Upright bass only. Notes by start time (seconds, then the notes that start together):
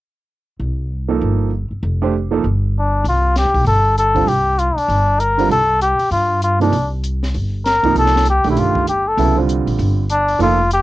0.60 C2
1.21 G1
1.71 muted upright bass stroke
1.83 F1
2.44 G1
3.04 C2
3.45 D2
3.54 B1
3.65 G1
4.27 C2
4.76 muted upright bass stroke
4.88 G1
5.49 C2
5.99 muted upright bass stroke
6.11 G2
6.72 C2
7.35 G1
7.84 muted upright bass stroke
7.96 C2
8.45 B1
8.57 G1
9.17 C2
9.67 A#1
9.79 G1
10.39 F1